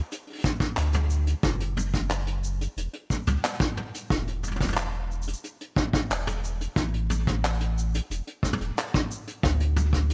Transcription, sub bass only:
0.78 1.34 D2 loud
1.43 2.67 F#1 loud
2.77 2.88 E1 medium
3.27 3.38 C#2 medium
4.11 5.34 E1 loud
6.10 6.67 E1 loud
6.76 8.00 A1 loud
8.10 8.21 E1 medium
8.61 8.71 E1 medium
9.43 10.14 D2 medium

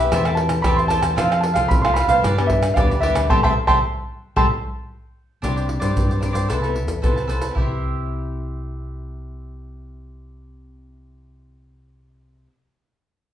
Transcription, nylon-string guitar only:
0.11 0.62 E3 medium
0.11 0.21 A3 medium
0.11 0.21 C4 medium
0.11 0.21 G4 medium
0.26 0.61 A3 medium
0.26 0.61 C4 medium
0.26 0.61 G4 medium
0.65 1.15 E3 medium
0.65 1.14 A3 medium
0.65 1.14 C4 medium
0.65 1.14 G4 medium
1.17 1.68 F3 medium
1.17 1.53 A3 medium
1.17 1.54 C4 medium
1.17 1.54 F4 medium
1.55 1.79 A3 medium
1.55 1.79 C4 medium
1.55 1.79 F4 medium
1.71 2.21 C3 medium
1.85 2.07 A3 medium
1.85 2.07 C4 medium
1.85 2.07 F4 medium
2.09 2.32 G3 medium
2.09 2.32 B3 medium
2.09 2.32 D4 medium
2.24 2.74 G2 medium
2.38 2.73 G3 medium
2.38 2.73 B3 medium
2.38 2.73 D4 medium
2.77 3.28 D3 medium
2.77 2.93 G3 medium
2.77 2.93 B3 medium
2.77 2.93 D4 medium
3.03 3.25 G3 medium
3.03 3.26 B3 medium
3.03 3.26 D4 medium
3.30 3.39 G3 medium
3.30 3.39 A3 loud
3.30 3.38 C4 medium
3.44 3.52 G3 medium
3.44 3.52 A3 medium
3.44 3.52 C4 loud
3.67 3.77 G3 medium
3.67 3.77 A3 medium
3.67 3.77 C4 medium
4.36 4.45 G3 medium
4.36 4.45 A3 medium
4.36 4.45 C4 medium
5.43 5.93 C3 medium
5.43 5.79 G3 medium
5.43 5.79 C4 soft
5.43 5.79 D4 medium
5.82 6.18 G3 medium
5.82 6.18 C4 medium
5.82 6.18 D4 medium
5.96 6.47 G2 medium
6.22 6.47 G3 medium
6.22 6.47 C4 medium
6.22 6.47 D4 medium
6.50 7.00 C3 soft
6.50 6.57 B3 medium
6.50 6.58 E4 soft
6.50 6.58 A4 medium
6.63 6.99 B3 medium
6.63 6.99 E4 medium
6.63 6.99 A4 medium
7.03 7.50 C3 medium
7.03 7.52 B3 medium
7.03 7.52 E4 soft
7.03 7.52 A4 medium
7.51 12.46 C3 soft
7.57 12.52 C4 medium
7.62 12.57 E4 medium
7.66 12.61 G4 medium

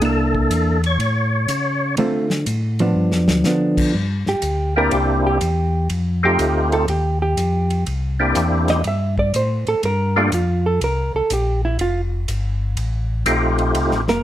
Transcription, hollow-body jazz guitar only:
0.02 0.77 A#3 medium
0.02 0.77 D4 medium
0.02 0.78 E4 medium
1.98 2.28 D3 medium
1.98 2.28 A3 medium
1.98 2.28 C4 medium
1.98 2.29 F4 medium
2.80 3.42 F3 medium
2.80 3.43 B3 medium
2.80 3.43 D4 medium
3.46 3.95 F3 medium
3.46 3.95 B3 medium
3.46 3.95 D4 medium
4.29 4.74 G4 medium
4.78 4.93 A#4 loud
4.95 5.25 G4 medium
5.27 5.87 G4 medium
6.25 6.70 G4 medium
6.73 6.89 A4 loud
6.90 7.21 G4 medium
7.22 7.83 G4 medium
8.70 8.85 D#5 loud
8.88 9.18 E5 loud
9.19 9.34 D5 loud
9.36 9.67 C5 medium
9.69 9.83 A4 loud
9.85 10.16 A#4 loud
10.17 10.32 D4 medium
10.34 10.65 F4 medium
10.66 10.81 A4 medium
10.84 11.15 A#4 loud
11.16 11.31 A4 medium
11.33 11.64 G4 medium
11.65 11.80 E4 medium
11.81 12.00 F4 loud
14.09 14.23 A#3 medium
14.09 14.23 A#4 loud

